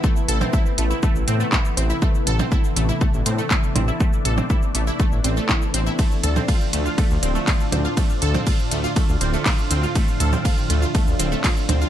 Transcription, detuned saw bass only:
\new Staff \with { instrumentName = "Detuned saw bass" } { \clef bass \time 4/4 \key a \minor \tempo 4 = 121 r8 a,,16 r8. a,,16 r8 a,,16 a,16 r8. a,,16 r16 | r8 a,,16 r8. a,,16 r8 a,,16 a,16 r8. a,,16 r16 | r8 a,,16 r8. a,,16 r8 a,,16 a,,16 r8. a,,16 r16 | r8 d,16 r8. d,16 r8 d,16 d,,16 r8. d,16 r16 |
r8 d,16 r8. d,16 r8 d,16 d,,16 r8. d,16 r16 | r8 d,16 r8. d,16 r8 d,16 d,,16 r8. d,16 r16 | }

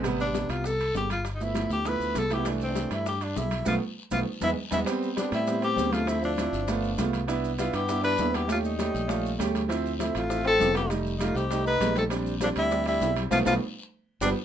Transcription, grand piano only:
\new Staff \with { instrumentName = "Grand piano" } { \time 4/4 \key c \major \tempo 4 = 199 <c g b>8 r16 <c g b>4. r4. r16 | r8 <f a b e'>16 r16 <f a b e'>8. r16 <f a b e'>4 r8 <f a b e'>16 <f a b e'>16 | <e a d'>8 r16 <e a d'>4. r4. r16 | <f a b>8 r4 <f a b>8 r8 <e gis b>8 r8 <e gis b>8 |
\key a \minor <g b c'>8. r16 <g b c'>8. r16 <g b c'>8. r16 <g b c'>8. r16 | <f c' e'>8. r16 <f c' e'>8. r16 <a b f'>8. r16 <a b f'>8. r16 | <b d' e'>8. r16 <b d' e'>8. r16 <b d' e'>8. r16 <b d' e'>8. r16 | <a cis' g'>8. r16 <a cis' g'>8. r16 <a cis' f'>8. r16 <a cis' g'>8. r16 |
<f c' e'>8. r16 <f c' e'>8. r16 <f c' e'>8. r16 <f c' e'>8. r16 | <g a ees'>8. r16 <g a ees'>8. r16 <g a ees'>8. r16 <g a ees'>8. r16 | <g c' d'>8. r16 <g c' d'>8. r16 <g c' d'>8. r16 <g c' e'>8. r16 | <f a b>8 <f a b>8 r2 <f g b>8 r8 | }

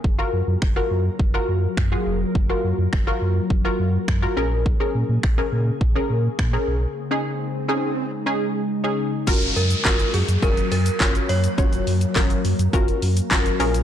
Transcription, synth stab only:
\new Staff \with { instrumentName = "Synth stab" } { \time 4/4 \key fis \major \tempo 4 = 104 r16 <eis' fis' ais'>8 r8 <eis' fis' ais'>8 r8 <eis' fis' ais'>8 r8 <eis' fis' gis'>8 r16 | r16 <eis' fis' ais'>8 r8 <eis' fis' ais'>8 r8 <eis' fis' ais'>8 r8 <eis' fis' ais'>16 <cis' gis' ais'>8 | r16 <cis' gis' ais'>8 r8 <cis' gis' ais'>8 r8 <cis' gis' ais'>8 r8 <cis' gis' ais'>8 r16 | r16 <cis' dis' gis'>8 r8 <cis' dis' gis'>8 r8 <cis' dis' gis'>8 r8 <cis' dis' gis'>8 r16 |
<cis' eis' fis' ais'>8 r8 <cis' eis' fis' ais'>8 r8 <cis' eis' fis' ais'>8 r8 <cis' eis' fis' cis''>8 r8 | <cis' eis' fis' cis''>8 r8 <cis' eis' fis' ais'>8 r8 <cis' eis' fis' ais'>8 r8 <cis' eis' fis' ais'>8 <cis' eis' gis' ais'>8 | }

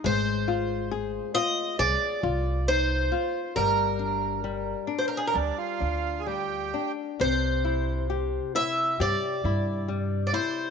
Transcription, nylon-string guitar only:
\new Staff \with { instrumentName = "Nylon-string guitar" } { \time 4/4 \key g \phrygian \tempo 4 = 68 aes8 f'8 aes'8 f'8 aes'8 f'8 ees'8 f'8 | g8 d'8 g8 d'8 g8 d'8 g8 d'8 | c8 e'8 g'8 e'8 g'8 e'8 g8 e'8 | }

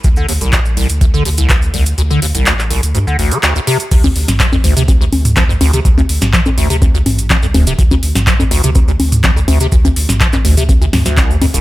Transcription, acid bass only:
\new Staff \with { instrumentName = "Acid bass" } { \clef bass \time 4/4 \key d \minor \tempo 4 = 124 d,16 d16 ees,16 c,16 d,16 r16 c,16 r16 d,16 d16 ees,16 c,16 d,16 r16 c,16 r16 | d,16 d16 ees,16 c,16 d,16 r16 c,16 r16 d,16 d16 d,16 d16 d,16 d,16 c16 r16 | d,16 d,16 r8 f16 f,16 d,16 c16 d,16 d,16 r8 f16 f,16 d,16 c16 | d,16 d,16 r8 f16 f,16 d,16 c16 d,16 d,16 r8 f16 f,16 d,16 c16 |
d,16 d,16 r8 f16 f,16 d,16 c16 d,16 d,16 r8 f16 f,16 d,16 c16 | d,16 d,16 r8 f16 f,16 d,16 c16 d,16 d,16 r16 d,16 c,16 ees,16 f,16 c,16 | }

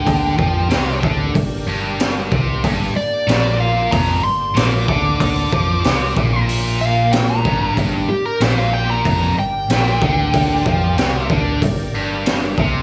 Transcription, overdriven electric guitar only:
\new Staff \with { instrumentName = "Overdriven electric guitar" } { \clef bass \time 4/4 \key g \minor \tempo 4 = 94 d8 f8 c8 d8 g,8 g,4 c8 | g,8 r8 bes,4 f,8 g,8 bes,8 d8~ | d8 f8 c8 bes,2 g,8 | g,8 r8 bes,4 f,8 g,8 bes,8 d8~ |
d8 f8 c8 d8 g,8 g,4 c8 | }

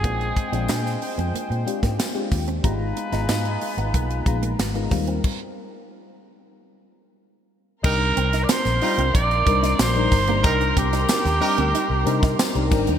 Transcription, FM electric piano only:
\new Staff \with { instrumentName = "FM electric piano" } { \time 4/4 \key c \minor \tempo 4 = 92 <aes c' d' f' g''>8. <aes c' d' f' g''>4. r16 <aes c' d' f' g'>8. <aes c' d' f' g'>8. | <aes ces' ees' f' bes''>8. <aes ces' ees' f' bes''>4. r16 <aes ces' ees' f' bes''>8. <aes ces' ees' f' bes'>16 <g c' ees' f' bes'>8 | r1 | <g c' d' ees' bes'>4~ <g c' d' ees' bes'>16 r16 <g c' d' ees' f'>8. r16 <g c' d' ees' bes'>8. <g c' d' ees' bes'>8 <g c' d' ees' bes'>16 |
<g c' d' ees' bes'>4~ <g c' d' ees' bes'>16 r16 <g c' d' ees' bes'>8. r16 <g c' d' ees' bes'>8. <g c' d' ees' bes'>16 <g c' d' ees' bes'>8 | }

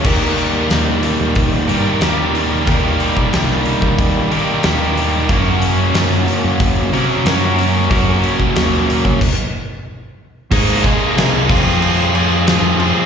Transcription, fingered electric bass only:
\new Staff \with { instrumentName = "Fingered electric bass" } { \clef bass \time 4/4 \key ees \dorian \tempo 4 = 92 ees,4 ees,8 r16 ees,8 r16 g,16 r16 ees,4 | ees,8 r8 c,8 r16 ees4~ ees16 ees,4 | ges,4 ges,8 r16 ges,8 r16 c16 r16 ges,4 | ges,8 r8 ees,8 r16 ges16 r2 |
aes,8 r8 c16 c,16 f,4.~ f,16 f,8 r16 | }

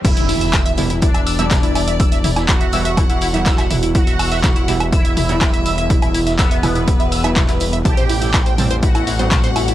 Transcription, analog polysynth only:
\new Staff \with { instrumentName = "Analog polysynth" } { \time 4/4 \key e \minor \tempo 4 = 123 e'2 d'2~ | d'4 fis'2. | fis'2 e'2~ | e'4 b2. |
g'2 fis'2 | }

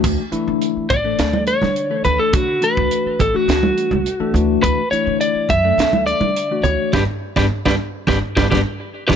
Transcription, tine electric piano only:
\new Staff \with { instrumentName = "Tine electric piano" } { \time 4/4 \key d \major \tempo 4 = 104 <e a d' fis'>16 r16 <e a d' e'>4 r16 <e a d' a'>4~ <e a d' a'>16 r16 <e a d' a'>8.~ | <e a d' a'>16 r16 <e a d' fis'>4 r16 <e a d' fis'>4~ <e a d' fis'>16 r16 <e a d' a'>16 <e a d' fis'>8~ | <e a d' fis'>16 r16 <e a d' e'>4 r16 <e a d' a'>4~ <e a d' a'>16 r16 <e a d' fis'>8. | <g b d'>16 r8 <g b d'>16 r16 <g b d'>16 r8 <g b d'>16 r16 <g b d'>16 <g b d'>16 r8. <g b d'>16 | }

